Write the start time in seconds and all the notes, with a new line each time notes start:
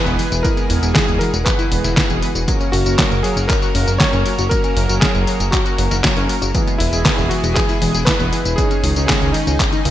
Already playing: B2 E3 G#3 E4 G#4 B4
0.06 E1 E3 G#3 B3 G#4, closed hi-hat, tambourine
0.19 E3, open hi-hat
0.32 E1 E4, closed hi-hat, tambourine
0.43 E3 G#3 B3 F#4 G#4 A#4, kick, closed hi-hat, tambourine
0.57 B3, closed hi-hat, tambourine
0.70 E1 E3, open hi-hat
0.83 E1 E3 G#3 B3 E4 G#4, closed hi-hat, tambourine
0.94 E3 G#4, kick, snare, clap, closed hi-hat, tambourine
1.08 E1 G#4, closed hi-hat, tambourine
1.19 E3 G#3 B3 G#4 A#4, open hi-hat
1.33 E1 B3, closed hi-hat, tambourine
1.45 E3 B4, kick, clap, closed hi-hat, tambourine
1.59 E4, closed hi-hat, tambourine
1.72 E1 E3 G#3 B3 G#4, open hi-hat
1.84 E1 E4, snare, closed hi-hat, tambourine
1.97 E4, kick, snare, clap, closed hi-hat, tambourine
2.10 E1 E3 G#3 B3 G#4, closed hi-hat, tambourine
2.22 B4, open hi-hat
2.35 E1 E3, closed hi-hat, tambourine
2.48 C#3 F#3 A#3 C#4 A#4, kick, closed hi-hat, tambourine
2.60 C#4, closed hi-hat, tambourine
2.72 F#1 F#3 F#4, open hi-hat
2.86 F#1 F#3 A#3 C#4 F#4 A#4, closed hi-hat, tambourine
2.99 F#3, kick, snare, clap, closed hi-hat, tambourine
3.11 F#1 A#4, closed hi-hat, tambourine
3.23 F#3 A#3 C#4 G#4 A#4, open hi-hat
3.37 F#1 C#4, closed hi-hat, tambourine
3.48 F#3 A#4, kick, clap, closed hi-hat, tambourine
3.62 F#4, closed hi-hat, tambourine
3.75 F#1 F#3 A#3 C#4 A#4, open hi-hat
3.87 F#1 A#4, closed hi-hat, tambourine
3.98 F#3 C#5, kick, snare, clap, closed hi-hat, tambourine
4.13 F#1 F#3 A#3 C#4 A#4, closed hi-hat, tambourine
4.26 F#3, open hi-hat
4.39 F#1 F#4, closed hi-hat, tambourine
4.49 F#3 A#3 C#4 A#4, kick, closed hi-hat, tambourine
4.64 C#4, closed hi-hat, tambourine
4.76 F#1 F#3, open hi-hat
4.89 F#1 F#3 A#3 C#4 F#4 A#4, closed hi-hat, tambourine
5.00 F#3 G#4, kick, snare, clap, closed hi-hat, tambourine
5.15 F#1 A#4, closed hi-hat, tambourine
5.27 F#3 A#3 C#4 A#4, open hi-hat
5.40 F#1 C#4, closed hi-hat, tambourine
5.51 F#3 F#4, kick, clap, closed hi-hat, tambourine
5.65 F#4, closed hi-hat, tambourine
5.78 F#1 F#3 A#3 C#4 A#4, open hi-hat
5.91 F#1 A#4, snare, closed hi-hat, tambourine
6.04 F#3, kick, snare, clap, closed hi-hat, tambourine
6.16 F#1 F#3 A#3 C#4 A#4, closed hi-hat, tambourine
6.29 F#3, open hi-hat
6.42 F#1 F#4, closed hi-hat, tambourine
6.55 B2 E3 G#3 B3 E4 G#4, kick, closed hi-hat, tambourine
6.67 B3, closed hi-hat, tambourine
6.78 E1 E3 E4, open hi-hat
6.93 E1 E3 G#3 B3 E4 G#4, closed hi-hat, tambourine
7.05 E3, kick, snare, clap, closed hi-hat, tambourine
7.18 E1 G#4, closed hi-hat, tambourine
7.29 E3 G#3 B3 F#4 G#4, open hi-hat
7.44 E1 B3, closed hi-hat, tambourine
7.54 E3 G#4, kick, clap, closed hi-hat, tambourine
7.69 E4, closed hi-hat, tambourine
7.81 E1 E3 G#3 B3 G#4, open hi-hat
7.94 E1 G#4, closed hi-hat, tambourine
8.05 E3 B4, kick, snare, clap, closed hi-hat, tambourine
8.20 E1 E3 G#3 B3 G#4, closed hi-hat, tambourine
8.33 E3, open hi-hat
8.45 E1 E4, closed hi-hat, tambourine
8.56 C#3 D#3 G#3 C#4 D#4 G#4 C#5, kick, closed hi-hat, tambourine
8.71 C#4, closed hi-hat, tambourine
8.83 C#2 D#3, open hi-hat
8.96 C#2 G#3 C#4 D#4 C#5, closed hi-hat, tambourine
9.07 D#3 G#4, kick, snare, clap, closed hi-hat, tambourine
9.22 C#2 G#4, closed hi-hat, tambourine
9.32 D#3 G#3 C#4 D#4 C#5, open hi-hat
9.47 C#2 C#4, closed hi-hat, tambourine
9.60 D#3, kick, clap, closed hi-hat, tambourine
9.73 D#4, closed hi-hat, tambourine
9.85 C#2 D#3, open hi-hat